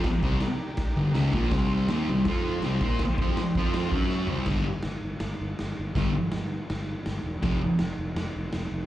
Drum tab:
CC |x-x-x-x-|x-x-x-x-|x-x-x---|x-x-x-x-|
SD |o-o-o-o-|o-o-o-o-|o-o-o-o-|o-o-o-o-|
FT |--------|--------|-------o|--------|
BD |oo--o--o|o---o--o|oo-o-o--|o-------|

CC |x-x-x-x-|x-x-x-x-|
SD |o-o-o-o-|o-o-o-o-|
FT |--------|--------|
BD |o-------|o-------|